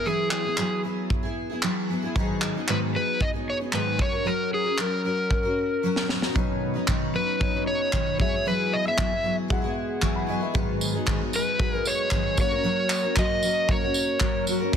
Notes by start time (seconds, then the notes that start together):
0.05 E3 F#3 B3 E4 G#4
0.31 G#4, clap
0.44 B3 E4 G#4
0.57 E3 F#3 B3 E4 G#4, clap
0.83 F#3 B3 E4 G#4
1.10 kick
1.23 B3 E4 G#4
1.50 B3 E4 G#4
1.63 E3 F#3 B3 E4 G#4, clap
1.89 F#3 B3 E4 G#4
2.02 B3 E4 G#4
2.15 G#2 D#3 F#3 B3 D#4 G#4, kick
2.42 clap
2.55 F#3 B3 D#4 G#4
2.68 G#2 D#3 F#3 B3 D#4 G#4 B4, clap
2.94 F#3 B3 D#4 G#4 B4
3.21 D#5, kick
3.33 F#3 B3 D#4 G#4
3.50 C#5
3.59 F#3 B3 D#4 G#4
3.72 G#2 D#3 F#3 B3 D#4 G#4 B4, clap
3.98 F#3 C#4 F#4 A#4 C#5, kick
4.12 C#4 F#4 A#4
4.25 F#3 C#4 F#4 A#4
4.54 G#4
4.63 C#4 F#4 A#4
4.78 F#3 C#4 F#4 A#4, clap
5.03 F#3 C#4 F#4 A#4
5.31 kick
5.43 C#4 F#4 A#4
5.83 F#3 C#4 F#4 A#4
5.96 snare
6.08 F#3 C#4 F#4 A#4, snare
6.21 C#4 F#4 A#4, snare
6.35 B2 D#3 F#3 B3 C#4 D#4 B4 C#5, kick
6.74 F#3 C#4 D#4 B4
6.87 B2 D#3 F#3 C#4 D#4 B4, kick, clap
7.14 F#3 C#4 D#4 B4
7.39 F#3 B3 C#4 D#4 C#5, kick
7.53 F#3 C#4 D#4 B4
7.67 C#5
7.92 B2 D#3 F#3 C#4 D#4 B4, kick, clap
8.18 F#3 G#3 B3 E4 F#4 G#4 C#5 E5, kick
8.32 B3 E4 G#4
8.45 E3 F#3 B3 E4 G#4 B4
8.73 D#5
8.84 B3 E4 G#4 E5
8.97 E3 F#3 B3 E4 G#4, kick, clap
9.10 B3 E4 G#4
9.23 F#3 B3 E4 G#4
9.48 F#3 G#3 B3 E4 F#4 G#4 F#5, kick
9.62 B3 E4 G#4
10.01 E3 F#3 B3 E4 G#4 G#5 C#6, kick, clap
10.16 F#5 B5
10.27 F#3 B3 E4 G#4 D#5 G#5
10.41 B3 E4 G#4 B4 E5
10.54 G#2 D#3 F#3 G#3 B3 D#4 F#4 G#4 B4, kick
10.81 tambourine
10.93 F#3 B3 D#4 G#4
11.06 G#2 D#3 F#3 B3 D#4 G#4, kick, clap
11.20 F#3 B3 D#4 G#4
11.33 F#3 B3 D#4 G#4 B4, tambourine
11.58 F#3 G#3 B3 D#4 F#4 B4, kick
11.63 G#4
11.72 F#3 B3 D#4 G#4 A#4
11.85 C#5, tambourine
12.11 G#2 D#3 F#3 B3 D#4 G#4, kick, clap
12.37 F#3 A#3 C#4 F#4 A#4 C#5, kick, tambourine
12.51 C#4 F#4 A#4
12.64 F#3 C#4 F#4 A#4
12.90 clap, tambourine
13.03 C#4 F#4 A#4
13.16 F#3 C#4 F#4 A#4 D#5, kick, clap
13.43 F#3 C#4 F#4 A#4, tambourine
13.68 F#3 A#3 C#4 F#4 A#4 C#5, kick
13.81 C#4 F#4 A#4
13.94 tambourine
14.20 F#3 C#4 F#4 A#4, kick, clap
14.47 F#3 C#4 F#4 A#4, tambourine
14.60 C#4 F#4 A#4
14.72 B2 D#3 B3 D#4 F#4, kick, crash